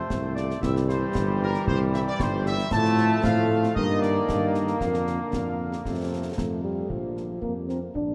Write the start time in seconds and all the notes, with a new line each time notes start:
Already playing: C3 A3 C5
0.10 C2, concert bass drum, snare
0.35 C4 F4 A4 D5, snare
0.51 snare
0.62 C2 E3 G3 E5, concert bass drum, snare
0.76 snare
0.88 C4 E4 G4 C5, snare
1.15 G1, concert bass drum, snare
1.41 C4 E4 G4 A#4
1.54 snare
1.66 C2 C5, concert bass drum
1.93 C4 E4 G4 E5, snare
2.07 D5
2.18 G1 C5, concert bass drum, snare
2.45 C4 E4 G4 E5, snare
2.58 snare
2.71 A2 F3 A3 C4 F4 A4 A5, concert bass drum, snare, crash
2.85 snare
2.98 snare
3.23 A2 C4 F4 A4 F5, concert bass drum, snare
3.63 snare
3.75 G2 D#3 A#3 D#4 A#4 D#5, concert bass drum
4.01 D5, snare
4.28 G2, concert bass drum, snare
4.54 D#5, snare
4.67 snare
4.80 F2 D3 A#3 D4 A#4 F5, concert bass drum, snare
4.94 snare
5.07 snare
5.33 F2, concert bass drum, snare
5.72 snare
5.85 F2 C3 A3 C4 C5, concert bass drum, snare
6.37 F2 A3, concert bass drum, snare
6.63 G3
6.90 A#1 F3, concert bass drum
7.14 A#3 D4 F4 A#4, snare
7.41 F2 A#3, concert bass drum
7.67 A#3 C4 D4 F4 A#4, snare
7.95 A#1 D4, concert bass drum